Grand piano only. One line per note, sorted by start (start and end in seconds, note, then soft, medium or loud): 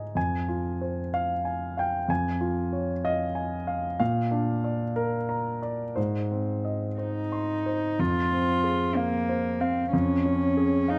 0.00 0.12 G#2 soft
0.00 0.18 D#4 soft
0.00 0.18 C5 soft
0.00 0.18 D#5 soft
0.00 0.17 G#5 soft
0.15 2.05 F2 soft
0.15 1.10 G#5 medium
0.48 1.00 F4 soft
0.81 1.33 C5 soft
1.14 1.74 F5 medium
1.45 1.97 G#5 soft
1.77 2.09 F5 soft
1.77 2.08 G5 medium
2.08 3.95 F2 soft
2.08 3.01 G#5 medium
2.41 2.92 F4 soft
2.73 3.23 C#5 soft
3.04 3.96 D#5 medium
3.04 3.55 F5 soft
3.35 3.87 G#5 soft
3.67 3.98 F5 soft
4.00 5.93 A#2 medium
4.00 4.93 F5 medium
4.31 4.83 D4 soft
4.64 5.16 D5 soft
4.96 5.59 A#4 medium
5.29 5.83 A#5 soft
5.62 5.97 D5 soft
5.96 7.95 G#2 soft
5.96 6.94 C5 soft
6.31 6.85 C4 soft
6.65 7.19 D#5 soft
6.98 7.53 C5 soft
7.32 7.86 C6 soft
7.66 7.99 C5 soft
7.99 9.89 F2 soft
8.32 8.83 C4 soft
8.64 9.15 G#4 soft
8.97 9.48 F5 soft
9.29 9.80 C5 soft
9.61 9.93 F5 soft
9.93 10.99 F2 soft
10.26 10.76 C#4 soft
10.57 10.99 G#4 soft
10.88 10.99 F5 soft